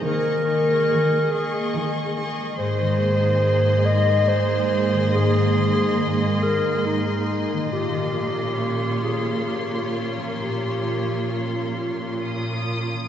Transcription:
<<
  \new Staff \with { instrumentName = "Violin section" } { \time 3/4 \key aes \major \tempo 4 = 69 r2. | r2. | r2. | r2. |
r2 ees'''4 | }
  \new Staff \with { instrumentName = "Violin section" } { \time 3/4 \key aes \major << { des'''8 des'''4 des'''4 des'''8 | c'''2.~ | c'''2. | c'''2.~ |
c'''2~ c'''8. r16 | } \\ { ees''8 ees''4 ees''4 ees''8 | ees''2.~ | ees''2.~ | ees''4 des''2~ |
des''2~ des''8. r16 | } >> }
  \new Staff \with { instrumentName = "Clarinet" } { \time 3/4 \key aes \major bes'4. aes'8 r4 | c''4. ees''8 c''4 | aes'4. bes'8 ees'4 | g'4. aes'8 g'8 r8 |
g'4 f'4 r4 | }
  \new Staff \with { instrumentName = "Viola section" } { \time 3/4 \key aes \major <bes aes'>8 <bes aes'>4 <bes aes'>4 <bes aes'>8 | <bes aes'>2.~ | <bes aes'>2. | <bes f'>2.~ |
<bes f'>2~ <bes f'>8. r16 | }
  \new Staff \with { instrumentName = "Harp" } { \time 3/4 \key aes \major <ees aes bes ees' bes'>16 aes16 ees'16 des''16 aes'16 ees''16 aes'16 ees''16 aes'16 des''16 ees'16 aes16 | aes,16 ees16 bes16 ees'16 c'''16 bes'8 bes'8 ees'16 bes16 ees16 | aes,16 bes16 ees16 ees'8 bes'8 bes'8 ees'16 bes16 ees16 | bes,16 f16 bes16 des'8 bes'8 bes'8 des'16 bes16 f16 |
bes,16 bes16 f16 des'8 bes'8 bes'8 des'16 bes16 f16 | }
  \new Staff \with { instrumentName = "Cello section" } { \clef bass \time 3/4 \key aes \major ees4 ees4 ees4 | aes,2.~ | aes,2. | bes,2.~ |
bes,2~ bes,8. r16 | }
>>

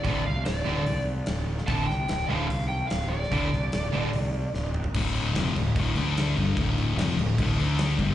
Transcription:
<<
  \new Staff \with { instrumentName = "Lead electric guitar" } { \time 4/4 \key d \minor \tempo 4 = 147 d''8 f''8 d''4. r4. | a''8 g''8.~ g''32 d''32 f''8 f''8 g''8 f''8 d''8~ | d''2.~ d''8 r8 | r1 |
r1 | }
  \new Staff \with { instrumentName = "Distorted electric guitar" } { \clef bass \time 4/4 \key d \minor <d, a, d>8 r4 <d, a, d>8 r2 | <d, a, d>8 r4 <d, a, d>8 r2 | <d, a, d>8 r4 <d, a, d>8 r2 | <d, a, d>4 <f, c f>8 <d, a,>8 <d, a, d>8 <d a d'>4 <g, d g>8 |
<d, a, d>4 <f, c f>8 <d, a,>8 <d, a, d>8 <d a d'>4 <g, d g>8 | }
  \new Staff \with { instrumentName = "Overdriven electric guitar" } { \clef bass \time 4/4 \key d \minor <d, a, d>8 r4 <d, a, d>8 r2 | <d, a, d>8 r4 <d, a, d>8 r2 | <d, a, d>8 r4 <d, a, d>8 r2 | r1 |
r1 | }
  \new Staff \with { instrumentName = "Fingered electric bass" } { \clef bass \time 4/4 \key d \minor d,,8 c,8 d,,8 d,,8 c,4 d,,4 | d,,8 c,8 d,,8 d,,8 c,4 d,,4 | d,,8 c,8 d,,8 d,,8 c,4 d,,4 | d,,4 f,,8 d,,8 d,,8 d,4 g,,8 |
d,,4 f,,8 d,,8 d,,8 d,4 g,,8 | }
  \new DrumStaff \with { instrumentName = "Drums" } \drummode { \time 4/4 <hho bd>4 <hho sn>4 hho4 <hho sn>8. sn16 | <hho bd>8 sn8 <hho sn>4 hho4 <hho sn>8. sn16 | <hho bd>8 sn8 <hho sn>4 hho4 sn8 toml16 tomfh16 | <cymc bd>8 cymc8 <cymc sn>8 cymc8 <cymc bd>8 cymc8 <cymc sn>8 cymc8 |
<cymc bd>8 cymc8 <cymc sn>16 sn16 cymc8 <cymc bd>8 cymc8 <cymc sn>8 <cymc bd>8 | }
>>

